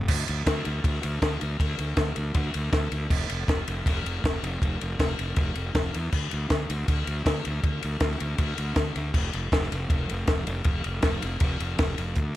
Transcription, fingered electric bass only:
0.09 0.23 D2 medium
0.29 0.43 D2 loud
0.47 0.61 D2 medium
0.66 0.80 D2 loud
0.84 0.98 D2 medium
1.04 1.18 D2 medium
1.22 1.36 D2 medium
1.42 1.56 D2 medium
1.60 1.74 D2 medium
1.79 1.93 D2 medium
1.97 2.11 D2 medium
2.17 2.31 D2 medium
2.35 2.49 D2 medium
2.55 2.69 D2 medium
2.73 2.87 D2 medium
2.92 3.06 D2 medium
3.11 3.25 F1 medium
3.30 3.44 F1 medium
3.48 3.62 F1 medium
3.68 3.82 F1 loud
3.86 4.00 F1 loud
4.05 4.19 F1 medium
4.25 4.38 F1 medium
4.43 4.57 F1 loud
4.62 4.76 F1 medium
4.82 4.95 F1 medium
5.00 5.14 F1 medium
5.19 5.33 F1 medium
5.37 5.51 F1 loud
5.56 5.70 F1 medium
5.75 5.89 F1 loud
5.95 6.09 E2 medium
6.13 6.27 D2 medium
6.33 6.46 D2 medium
6.50 6.65 D2 medium
6.70 6.84 D2 loud
6.88 7.02 D2 medium
7.07 7.21 D2 medium
7.26 7.40 D2 medium
7.47 7.60 D2 medium
7.64 7.78 D2 medium
7.84 7.98 D2 medium
8.01 8.15 D2 medium
8.21 8.35 D2 loud
8.39 8.53 D2 medium
8.58 8.72 D2 medium
8.77 8.91 D2 medium
8.96 9.10 D2 medium
9.14 9.29 F1 medium
9.34 9.48 F1 medium
9.52 9.67 F1 medium
9.72 9.86 F1 loud
9.90 10.04 F1 loud
10.11 10.24 F1 medium
10.28 10.42 F1 medium
10.47 10.61 F1 medium
10.65 10.80 F1 medium
10.86 11.00 F1 medium
11.03 11.18 F1 medium
11.23 11.37 F1 loud
11.41 11.55 F1 medium
11.60 11.75 F1 medium
11.79 11.94 F1 loud
11.98 12.13 F1 medium
12.17 12.32 D2 medium

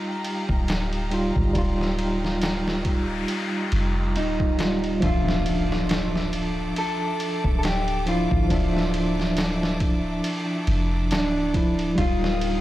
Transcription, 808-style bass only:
0.49 1.31 D1 loud
1.36 1.53 G1 medium
1.55 3.25 D1 medium
3.72 4.18 F1 medium
4.16 4.99 D1 medium
5.02 6.73 D1 loud
7.44 8.27 D1 loud
8.31 8.48 G1 medium
8.50 10.21 D1 loud
10.67 11.12 F1 loud
11.11 11.94 D1 medium
11.98 12.61 D1 loud

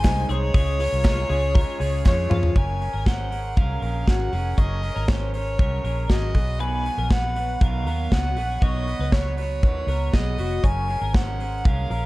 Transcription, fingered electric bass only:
0.04 0.26 C2 loud
0.29 0.51 C2 medium
0.54 0.86 C#2 medium
0.92 1.24 C2 medium
1.30 1.62 C#2 loud
1.80 2.02 C#2 medium
2.06 2.27 F2 loud
2.31 2.52 F2 medium
2.56 2.88 F#1 medium
2.94 3.54 G#1 medium
3.57 3.78 C2 medium
3.82 4.03 A#1 medium
4.07 4.29 G#1 medium
4.33 4.54 F1 medium
4.58 4.90 F#1 medium
4.96 5.56 G#1 medium
5.59 5.81 C2 medium
5.84 6.06 A#1 medium
6.09 6.31 G#1 loud
6.34 6.88 B1 medium
6.98 7.58 A#1 medium
7.61 7.86 B1 medium
7.86 8.08 D#2 medium
8.12 8.36 C#2 medium
8.36 8.58 A#1 medium
8.62 8.94 B1 medium
8.99 9.63 C#2 medium
9.63 9.85 D#2 medium
9.87 10.09 C#2 medium
10.14 10.35 B1 medium
10.38 10.60 F1 medium
10.64 10.96 F#1 medium
11.01 11.62 G#1 medium
11.65 11.87 C2 medium
11.90 12.06 A#1 medium

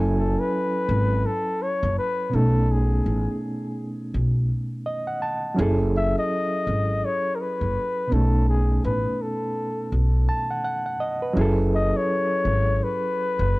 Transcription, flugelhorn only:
0.18 0.41 A4 medium
0.40 1.27 B4 loud
1.26 1.63 A4 medium
1.62 1.97 C#5 medium
1.98 2.36 B4 medium
2.35 2.72 A4 medium
2.71 3.42 G#4 medium
5.97 6.16 E5 medium
6.18 7.07 D#5 loud
7.05 7.37 C#5 medium
7.35 7.42 A#4 medium
7.41 8.15 B4 medium
8.13 8.48 A4 medium
8.49 8.82 G#4 medium
8.85 9.23 B4 medium
9.22 9.93 A4 medium
11.75 11.98 D#5 loud
11.96 12.85 C#5 loud
12.83 13.60 B4 medium

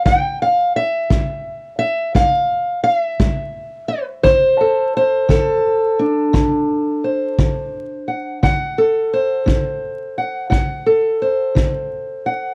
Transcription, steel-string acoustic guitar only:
0.05 0.68 G3 medium
0.05 0.41 G5 loud
0.42 0.76 F5 medium
0.76 1.78 E5 medium
1.10 1.73 G3 medium
1.79 2.14 E5 loud
2.15 2.78 G3 medium
2.15 2.83 F5 loud
2.84 2.98 F5 loud
2.98 4.24 E5 loud
3.20 3.82 G3 medium
3.88 4.04 B4 medium
4.23 4.87 D3 medium
4.23 4.94 C5 loud
4.61 5.30 A4 soft
4.97 6.00 C5 medium
5.29 5.92 D3 medium
5.29 7.39 A4 medium
5.99 8.39 D4 medium
6.33 6.96 D3 medium
7.04 8.39 C5 soft
7.39 8.01 D3 medium
8.08 8.38 F#5 soft
8.43 9.05 D3 medium
8.43 10.17 F#5 medium
8.78 10.86 A4 medium
9.13 11.21 C5 medium
9.46 10.09 D3 medium
10.18 10.49 F#5 medium
10.50 11.13 D3 medium
10.50 12.25 F#5 medium
10.86 12.54 A4 medium
11.22 12.54 C5 medium
11.55 12.18 D3 medium
12.26 12.54 F#5 medium

